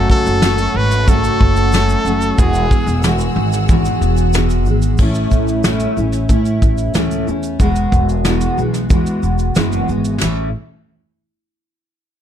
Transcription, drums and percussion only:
0.10 kick, shaker
0.26 shaker
0.42 snare, shaker
0.58 shaker
0.91 snare, shaker
1.08 kick, shaker
1.24 shaker
1.41 kick
1.56 shaker
1.72 snare, shaker
1.89 shaker
2.05 shaker
2.07 shaker
2.21 shaker
2.38 kick, shaker
2.53 shaker
2.55 shaker
2.71 kick, shaker
2.87 shaker
3.03 snare, shaker
3.18 shaker
3.21 shaker
3.52 snare, shaker
3.68 kick, shaker
3.85 shaker
4.02 shaker
4.17 shaker
4.33 snare, shaker
4.50 shaker
4.66 shaker
4.82 shaker
4.98 kick, crash, shaker
5.14 shaker
5.31 kick, shaker
5.33 shaker
5.48 shaker
5.64 snare, shaker
5.80 shaker
5.97 shaker
6.12 snare, shaker
6.29 kick, shaker
6.46 shaker
6.62 kick, shaker
6.78 shaker
6.94 snare, shaker
7.11 shaker
7.28 shaker
7.43 shaker
7.60 kick, shaker
7.76 shaker
7.92 kick, shaker
8.09 shaker
8.25 snare, shaker
8.41 shaker
8.58 shaker
8.74 snare, shaker
8.90 kick, shaker
9.06 shaker
9.23 shaker
9.39 shaker
9.55 snare, shaker
9.72 shaker
9.89 shaker
10.05 shaker
10.21 snare, ride bell, shaker

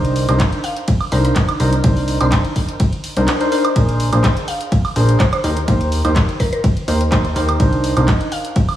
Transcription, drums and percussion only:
0.05 closed hi-hat
0.16 open hi-hat
0.29 closed hi-hat, high woodblock
0.40 kick, clap, closed hi-hat, ride
0.53 closed hi-hat
0.64 open hi-hat
0.77 closed hi-hat
0.88 kick, closed hi-hat, ride
1.01 open hi-hat, high woodblock
1.12 open hi-hat
1.25 closed hi-hat
1.36 kick, clap, closed hi-hat, ride
1.49 closed hi-hat, high woodblock
1.60 open hi-hat
1.73 closed hi-hat
1.84 kick, closed hi-hat, ride
1.97 open hi-hat
2.08 open hi-hat
2.21 closed hi-hat, high woodblock
2.32 kick, clap, closed hi-hat, ride
2.45 closed hi-hat
2.56 kick, open hi-hat
2.69 closed hi-hat
2.80 kick, closed hi-hat, ride
2.93 closed hi-hat
3.04 open hi-hat
3.17 closed hi-hat
3.28 clap, closed hi-hat, ride
3.41 closed hi-hat
3.52 open hi-hat
3.65 closed hi-hat, high woodblock
3.76 kick, closed hi-hat, ride
3.89 closed hi-hat
4.00 open hi-hat
4.13 closed hi-hat, high woodblock
4.24 kick, clap, closed hi-hat, ride
4.37 closed hi-hat
4.48 open hi-hat
4.61 closed hi-hat
4.72 kick, closed hi-hat, ride
4.85 open hi-hat, high woodblock
4.96 open hi-hat
5.09 closed hi-hat
5.20 kick, clap, closed hi-hat, ride
5.33 closed hi-hat, high woodblock
5.44 open hi-hat
5.57 closed hi-hat
5.68 kick, closed hi-hat, ride
5.81 closed hi-hat
5.92 open hi-hat
6.05 closed hi-hat, high woodblock
6.16 kick, clap, closed hi-hat, ride
6.29 closed hi-hat
6.40 kick, open hi-hat
6.53 closed hi-hat
6.64 kick, closed hi-hat, ride
6.77 closed hi-hat
6.88 open hi-hat
7.01 closed hi-hat
7.12 kick, clap, closed hi-hat, ride
7.25 closed hi-hat
7.36 open hi-hat
7.49 closed hi-hat, high woodblock
7.60 kick, closed hi-hat, ride
7.73 closed hi-hat
7.84 open hi-hat
7.97 closed hi-hat, high woodblock
8.08 kick, clap, closed hi-hat, ride
8.21 closed hi-hat
8.32 open hi-hat
8.45 closed hi-hat
8.56 kick, closed hi-hat, ride
8.69 open hi-hat, high woodblock

